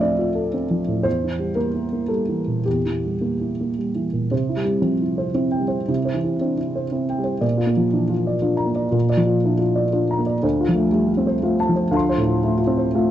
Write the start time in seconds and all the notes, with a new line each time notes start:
Already playing: D2 F3 A3 E5
0.01 C4 D5
0.19 F4
0.35 A4
0.54 C4
0.71 F3
0.88 A2
1.03 E2 C5
1.23 E3
1.39 G3
1.55 A#3 A#4
1.74 E4
1.93 A#3
2.08 G3 A4
2.28 E3
2.47 A#2
2.65 E2 G4
2.86 E3
3.05 G3
3.21 A#3
3.40 E4
3.61 A#3
3.78 G3
3.95 E3
4.13 A#2
4.31 C3 C5
4.49 E4
4.56 G3
4.65 G3
4.82 F3 C4
5.01 E4
5.18 C5
5.34 C4 E4
5.52 G5
5.59 G3
5.68 C5
5.88 C3 E4
6.05 C5
6.14 E3
6.24 E4
6.41 C4 D4
6.57 E4
6.76 C5
6.92 C4 E4
7.10 G5
7.18 G3
7.24 C5
7.41 A#2 D5
7.58 F4
7.67 A#3
7.77 F3
7.93 E3 D4
8.10 F4
8.27 D5
8.42 D4 F4
8.57 A#5
8.66 A#3
8.75 D5
8.91 A#2 F4
9.09 D5
9.17 F3
9.26 F4
9.44 D4 E4
9.59 F4
9.75 D5
9.93 D4 F4
10.11 A#5
10.18 A#3
10.26 D5
10.43 D2 C5
10.60 F4
10.69 F3
10.75 A3
10.92 G3 A3
11.08 F4
11.17 C4
11.27 C5
11.42 A3 F4
11.60 A5
11.69 F3
11.76 C5
11.91 D2 F4 F5 A5
11.97 C6
12.09 C5
12.18 A2
12.25 F4
12.44 A3 E4
12.58 F4
12.67 C4
12.78 C5
12.95 A3 F4